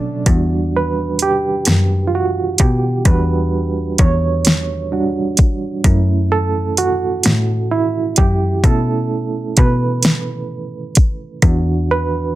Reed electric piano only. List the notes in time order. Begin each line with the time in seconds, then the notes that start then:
Already playing: B2 F#3 C#4 D4 A4 D5
0.27 G3 D4 F#4
0.76 B4
1.22 G4
2.07 F4
2.15 F#4
2.61 G4
3.06 G3 D4 F#4 B4
4.00 C#5
4.92 G3 D4 F#4
5.84 A3 C#4 E4
6.32 A4
6.78 F#4
7.71 E4
8.18 G4
8.64 A3 C#4 E4 A4
9.59 B4
11.44 E3 D4 F#4
11.91 B4